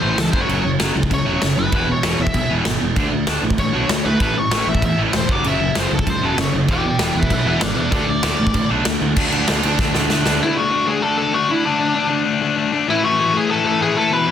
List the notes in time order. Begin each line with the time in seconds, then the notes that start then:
0.01 A1 A2 E3 A3
0.10 C5
0.16 C#2 A2 E3, snare, crash
0.21 A4
0.32 F#1 F#2 C#3 F#3 C5, kick
0.41 C#5
0.48 F#1 F#2 C#3 F#3, crash
0.64 F#1 F#2 C#3
0.79 F#1 F#2 C#3 F#3, snare, crash
0.95 C#2 F#2 C#3
1.03 kick
1.10 C#2 F#2 C#3 C#5, kick, crash
1.25 E1 F#2 C#3 F#3
1.41 F#1 F#2 C#3, snare, crash
1.56 F#1 F#2 C#3 B4
1.72 E1 E2 B2 E3 B4, kick, crash
1.87 E2 B2
1.92 C#5
2.03 E1 E2 B2 E3, snare, crash
2.19 E1 E2 B2 E5
2.27 kick
2.34 B1 E2 B2 E5, kick, crash
2.50 E1 E2 B2 E3
2.65 G#1 E2 B2, snare, crash
2.80 E1 E2 B2
2.96 D2 D3 A3 D4, kick, crash
3.11 D2 D3 A3
3.27 D2 D3 A3 D4, snare, crash
3.42 A1 D3 A3
3.50 kick
3.58 A1 D3 A3 C#5, kick, crash
3.73 B1 D3 A3 D4
3.89 D2 D3 A3, snare, crash
4.05 D2 D3 A3 B4
4.20 A1 A2 E3 A3 B4, kick, crash
4.36 A2 E3 C#5
4.51 A1 A2 E3 A3, snare, crash
4.67 A1 A2 E3 E5
4.75 kick
4.82 E2 A2 E3 E5, kick, crash
4.97 A1 A2 E3 A3
5.13 E1 A2 E3 C5, snare, crash
5.28 F#1 F#2 C#3 F#3 D5, kick
5.44 F#1 F#2 C#3 F#3 E5, crash
5.60 F#1 F#2 C#3
5.75 F#1 F#2 C#3 F#3 C5, snare, crash
5.91 C#2 F#2 C#3 A4
5.99 kick
6.07 C#2 F#2 C#3 C5, kick, crash
6.21 E1 F#2 C#3 F#3 A4
6.37 F#1 F#2 C#3 C#5, snare, crash
6.52 F#1 F#2 C#3
6.68 E1 E2 B2 E3 D5 G5, kick, crash
6.84 E2 B2 D5 G5
6.98 E1 E2 B2 E3, snare, crash
7.03 D5 G5
7.15 E1 E2 B2 B4 E5
7.23 kick
7.30 B1 E2 B2 B4 E5, kick, crash
7.45 E1 E2 B2 E3 B4 E5
7.61 G#1 E2 B2 B4 D5, snare, crash
7.76 E2 B2 B4 D5
7.91 D2 D3 A3 D4 A4 D5, kick, crash
8.07 D2 D3 A3 D5
8.23 D2 D3 A3 D4, snare, crash
8.38 A1 D3 A3
8.47 kick
8.54 A1 D3 A3, kick, crash
8.70 B1 D3 A3 D4
8.85 D2 D3 A3, snare, crash
9.01 D2 D3 A3
9.16 D2 D3 A3 D4, kick, crash
9.32 D2 D3 A3 D4, crash
9.47 D2 D3 A3 D4, snare, crash
9.62 D2 D3 A3 D4, crash
9.78 D2 D3 A3 D4, kick, snare
9.93 D2 D3 A3 D4, snare
10.09 D2 D3 A3 D4, snare
10.25 D2 D3 A3 D4, snare
10.40 D3 A3 D4 E4
10.56 D3 A3 D4 F#4
10.71 D3 A3 D4
10.87 D3 A3 D4 G#4
11.02 D3 A3 D4 A4
11.18 D3 A3 D4 A4
11.33 D3 A3 D4 F#4
11.49 D3 A3 D4 E4
11.64 D3 A3 D4
11.79 D3 A3 D4
11.94 D3 A3 D4
12.09 D3 A3 D4
12.26 D3 A3 D4
12.41 D3 A3 D4
12.56 D3 A3 D4
12.72 D3 A3 D4
12.87 A2 E3 A3 E4
13.03 A2 E3 A3 F#4
13.19 A2 E3 A3
13.34 A2 E3 A3 G#4
13.49 A2 E3 A3 A4
13.65 A2 E3 A3 A4
13.80 A2 E3 A3 G#4
13.95 A2 E3 A3 A4
14.11 E2 B2 E3 B4
14.27 B2 E3